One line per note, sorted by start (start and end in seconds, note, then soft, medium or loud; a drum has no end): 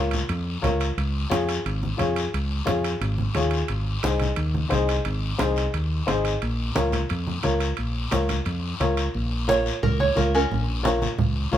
0.00 0.22 C#2 medium
0.00 0.19 F4 medium
0.00 0.19 A#4 medium
0.00 0.19 C#5 medium
0.11 high conga medium
0.11 high timbale medium
0.11 short guiro medium
0.29 0.56 F2 medium
0.29 high conga soft
0.29 high timbale medium
0.29 long guiro medium
0.62 0.90 C#2 medium
0.62 0.86 F4 medium
0.62 0.86 A#4 medium
0.62 0.87 C#5 medium
0.62 high conga medium
0.62 high timbale medium
0.62 low timbale medium
0.62 short guiro medium
0.80 high timbale medium
0.80 short guiro medium
0.97 1.24 C#2 medium
0.97 high conga soft
0.97 high timbale medium
0.97 long guiro medium
1.29 1.58 F2 medium
1.29 1.54 F4 medium
1.29 1.54 G#4 medium
1.29 1.54 C#5 medium
1.29 high conga medium
1.29 high timbale medium
1.29 short guiro medium
1.49 high timbale medium
1.49 short guiro medium
1.65 1.93 G#1 medium
1.65 high conga soft
1.65 high timbale medium
1.65 long guiro medium
1.83 high conga medium
1.97 2.27 F2 medium
1.97 2.22 F4 medium
1.97 2.22 G#4 medium
1.97 2.23 C#5 medium
1.97 high conga medium
1.97 high timbale medium
1.97 short guiro medium
2.16 high timbale medium
2.16 short guiro medium
2.34 2.61 C#2 medium
2.34 high conga soft
2.34 high timbale medium
2.34 long guiro medium
2.65 2.95 F2 medium
2.65 2.90 F4 medium
2.65 2.90 G#4 medium
2.65 2.90 C#5 medium
2.65 high conga medium
2.65 high timbale medium
2.65 short guiro medium
2.84 high timbale medium
2.84 short guiro medium
3.01 3.28 G#1 medium
3.01 high conga soft
3.01 high timbale medium
3.01 long guiro medium
3.18 high conga medium
3.35 3.62 D#2 medium
3.35 3.59 F4 medium
3.35 3.59 G#4 medium
3.35 3.59 C#5 medium
3.35 high conga medium
3.35 high timbale medium
3.35 low timbale medium
3.35 short guiro medium
3.51 high timbale medium
3.51 short guiro medium
3.68 3.97 G#1 medium
3.68 high conga soft
3.68 high timbale medium
3.68 long guiro medium
4.03 4.31 C2 medium
4.03 4.27 D#4 medium
4.03 4.27 G#4 medium
4.03 4.27 C5 medium
4.03 high conga medium
4.03 high timbale medium
4.03 short guiro medium
4.20 high conga medium
4.20 high timbale medium
4.20 short guiro medium
4.36 4.64 D#2 medium
4.36 high conga soft
4.36 high timbale medium
4.36 long guiro medium
4.54 high conga medium
4.69 4.99 C2 medium
4.69 4.94 D#4 medium
4.69 4.94 G#4 medium
4.69 4.94 C5 medium
4.69 high conga medium
4.69 high timbale medium
4.69 short guiro medium
4.89 high timbale medium
4.89 short guiro medium
5.05 5.33 G#1 medium
5.05 high conga soft
5.05 high timbale medium
5.05 long guiro medium
5.38 5.67 C2 medium
5.38 5.62 D#4 medium
5.38 5.63 G#4 medium
5.38 5.63 C5 medium
5.38 high conga medium
5.38 high timbale medium
5.38 short guiro medium
5.56 high timbale medium
5.56 short guiro medium
5.74 6.01 D#2 medium
5.74 high conga soft
5.74 high timbale medium
5.74 long guiro medium
6.06 6.35 G#1 medium
6.06 6.31 D#4 medium
6.06 6.31 G#4 medium
6.06 6.31 C5 medium
6.06 high conga medium
6.06 high timbale medium
6.06 low timbale medium
6.06 short guiro medium
6.25 high timbale medium
6.25 short guiro medium
6.42 6.69 A#1 medium
6.42 high conga soft
6.42 high timbale medium
6.42 long guiro medium
6.75 7.03 C#2 medium
6.75 6.99 F4 medium
6.75 6.99 A#4 medium
6.75 6.99 C#5 medium
6.75 high conga medium
6.75 high timbale medium
6.75 short guiro medium
6.92 high conga medium
6.92 high timbale medium
6.92 short guiro medium
7.09 7.37 F2 medium
7.09 high conga soft
7.09 high timbale medium
7.09 long guiro medium
7.27 high conga medium
7.43 7.71 C#2 medium
7.43 7.67 F4 medium
7.43 7.68 A#4 medium
7.43 7.67 C#5 medium
7.43 high conga medium
7.43 high timbale medium
7.43 short guiro medium
7.60 high timbale medium
7.60 short guiro medium
7.77 8.05 A#1 medium
7.77 high conga soft
7.77 high timbale medium
7.77 long guiro medium
8.11 8.39 C#2 medium
8.11 8.35 F4 medium
8.11 8.35 A#4 medium
8.11 8.36 C#5 medium
8.11 high conga medium
8.11 high timbale medium
8.11 short guiro medium
8.29 high conga medium
8.29 high timbale medium
8.29 short guiro medium
8.45 8.73 F2 medium
8.45 high conga soft
8.45 high timbale medium
8.45 long guiro medium
8.80 9.07 C#2 medium
8.80 9.04 F4 medium
8.80 9.04 A#4 medium
8.80 9.04 C#5 medium
8.80 high conga medium
8.80 high timbale medium
8.80 low timbale medium
8.80 short guiro medium
8.97 high timbale medium
8.97 short guiro medium
9.14 9.69 A#1 medium
9.14 high conga soft
9.14 long guiro medium
9.47 9.72 F4 medium
9.47 9.72 A#4 medium
9.47 9.72 C#5 medium
9.47 9.81 C#5 medium
9.47 high conga medium
9.47 short guiro medium
9.66 short guiro medium
9.83 10.10 C#2 loud
9.83 9.99 A#4 medium
9.83 high conga soft
9.83 low conga medium
9.83 long guiro medium
10.00 10.16 C#5 medium
10.00 high conga medium
10.15 10.44 C#2 loud
10.15 10.40 F4 medium
10.15 10.40 A#4 medium
10.15 10.33 A#4 medium
10.15 10.40 C#5 medium
10.15 high conga medium
10.15 short guiro medium
10.34 10.66 C#4 medium
10.34 10.67 A#4 medium
10.34 short guiro medium
10.51 11.06 A#1 medium
10.51 high conga soft
10.51 low conga medium
10.51 long guiro medium
10.83 11.08 F4 medium
10.83 11.08 A#4 medium
10.83 11.08 C#5 medium
10.83 high conga loud
10.83 short guiro medium
11.02 high conga medium
11.02 short guiro medium
11.19 11.46 C#2 medium
11.19 high conga soft
11.19 low conga medium
11.19 long guiro medium
11.51 11.58 C#2 loud
11.51 11.58 F4 medium
11.51 11.58 A#4 medium
11.51 11.58 C#5 medium
11.51 high conga medium
11.51 short guiro medium